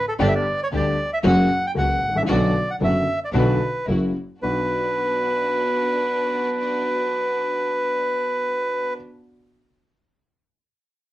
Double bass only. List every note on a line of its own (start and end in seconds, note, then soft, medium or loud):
0.20 0.42 G1 medium
0.72 0.94 D2 medium
1.24 1.46 F#1 loud
1.76 1.98 C#2 medium
2.02 2.26 A1 medium
2.27 2.49 B1 medium
2.81 3.03 F#1 medium
3.32 3.56 B1 medium
3.88 4.11 F#1 medium
4.42 4.64 B1 medium